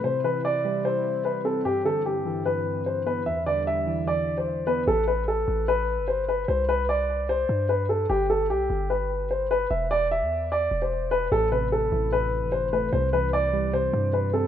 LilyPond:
<<
  \new Staff \with { instrumentName = "Grand piano" } { \time 4/4 \key g \major \tempo 4 = 149 c''8 b'8 d''4 c''4 b'8 a'8 | g'8 a'8 g'4 b'4 c''8 b'8 | e''8 d''8 e''4 d''8. c''8. b'8 | a'8 b'8 a'4 b'4 c''8 b'8 |
c''8 b'8 d''4 c''4 b'8 a'8 | g'8 a'8 g'4 b'4 c''8 b'8 | e''8 d''8 e''4 d''8. c''8. b'8 | a'8 b'8 a'4 b'4 c''8 b'8 |
c''8 b'8 d''4 c''4 b'8 a'8 | }
  \new Staff \with { instrumentName = "Analog synth pad" } { \clef bass \time 4/4 \key g \major <c c' e'>1 | <g, e>1 | <e, d g>1 | r1 |
r1 | r1 | r1 | r1 |
r1 | }
  \new Staff \with { instrumentName = "Synth keys" } { \clef bass \time 4/4 \key g \major c8 e4 g8 c4. c'8 | g,8 d4 e8 g,4. b8 | e,8 d4 e8 e,4. b8 | r1 |
r1 | r1 | r1 | a,8 c4 e8 a,4. a8 |
c8 e4 g8 c4. c'8 | }
  \new Staff \with { instrumentName = "808-style bass" } { \clef bass \time 4/4 \key g \major r1 | r1 | r1 | a,,4. a,,4~ a,,16 g,,4~ g,,16 |
c,2~ c,8 g,4. | g,,4 b,,8 g,,2~ g,,8 | e,,4~ e,,16 e,4~ e,16 e,,4. | a,,4. a,,4~ a,,16 g,,4~ g,,16 |
c,2~ c,8 g,4. | }
>>